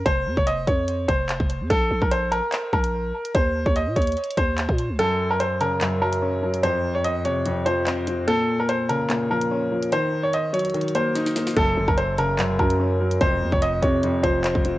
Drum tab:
HH |x-----------------------x-----------x-----------x-----------x-----------x-----------x-----------|x-----------------------x-----------x-----------x-----------------x-----------------------x-----|x-----------------------x-----------x--x--x--x--x---x---x---x-----------x-----------x-----------|x-----------------------x-----------x-----------x-----------------x-----------------------x-----|
CP |------------------------------------------------------------------------x-----------------------|------------------------------------------------x-----------------------------------------------|------------------------------------------------------------------------x-----------------------|------------------------------------------------x-----------------------------------------------|
SD |------------------------------------------------------------------------------------------------|------------------------------------------------------------------------------------------------|------------------------------------------------------------------------------------------------|------------------------------------------------------------------------------------------------|
BD |o-----------------o-----------------o-----------------------o-----------------o-----------------|o-----------------o-----------------------------------------o-----------------------------------|o-----------------o-----------------o-----------------------o-----------------o-----------------|------------------------------------------------------------------------------------------------|

HH |x-----------------------x-----------x-----------x-----------x-----------x-----------x-----------|x-----------------------x-----------x-----------x-----------------x-----------------------x-----|x-----------------------x-----------x--x--x--x--x---x---x---x-----------x-----------x-----------|x-----------------------x-----------x-----------x-----------------x-----------------------x-----|
CP |------------------------------------------------------------------------x-----------------------|------------------------------------------------x-----------------------------------------------|------------------------------------------------------------------------------------------------|------------------------------------------------x-----------------------------------------------|
SD |------------------------------------------------------------------------------------------------|------------------------------------------------------------------------------------------------|------------------------------------------------------------------------o-----o-----o-----o-----|------------------------------------------------------------------------------------------------|
BD |------------------------------------------------------------------------------------------------|------------------------------------------------------------------------------------------------|------------------------------------------------------------------------------------------------|o-----------------o-----------------------------------------o-----------------------------------|

HH |x-----------------------x-----------x-----------x-----------x-----------x-----------x-----------|
CP |------------------------------------------------------------------------x-----------------------|
SD |------------------------------------------------------------------------------------------------|
BD |o-----------------o-----------------o-----------------------o-----------------o-----------------|